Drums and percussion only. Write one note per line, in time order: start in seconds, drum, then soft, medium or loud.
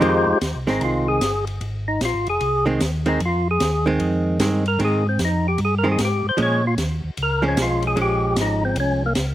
0.02 kick soft
0.02 ride medium
0.41 kick soft
0.41 snare medium
0.41 hi-hat pedal medium
0.41 ride medium
0.67 snare soft
0.81 kick soft
0.81 ride medium
1.21 kick soft
1.21 snare medium
1.21 hi-hat pedal medium
1.21 ride medium
1.47 ride soft
1.61 kick soft
1.61 ride medium
2.01 kick soft
2.01 snare medium
2.01 hi-hat pedal medium
2.01 ride medium
2.27 ride soft
2.40 kick soft
2.40 ride medium
2.80 kick soft
2.80 snare medium
2.80 hi-hat pedal medium
2.80 ride medium
3.06 ride soft
3.20 kick soft
3.20 ride medium
3.60 kick soft
3.60 snare medium
3.60 hi-hat pedal medium
3.60 ride medium
4.00 kick soft
4.00 ride medium
4.40 kick soft
4.40 snare medium
4.40 hi-hat pedal medium
4.40 ride medium
4.66 ride soft
4.80 kick soft
4.80 ride medium
5.19 kick soft
5.19 snare medium
5.19 hi-hat pedal medium
5.19 ride medium
5.58 kick soft
5.58 ride medium
5.98 kick soft
5.98 snare medium
5.98 hi-hat pedal medium
5.98 ride medium
6.38 kick soft
6.38 ride medium
6.78 kick soft
6.78 snare medium
6.78 hi-hat pedal medium
6.78 ride medium
7.17 kick soft
7.17 ride medium
7.57 kick soft
7.57 snare medium
7.57 hi-hat pedal medium
7.57 ride medium
7.82 ride soft
7.97 kick soft
7.97 ride medium
8.36 kick soft
8.36 snare medium
8.36 hi-hat pedal medium
8.36 ride medium
8.76 kick soft
8.76 ride medium
9.15 kick soft
9.15 snare medium
9.15 hi-hat pedal medium
9.15 ride medium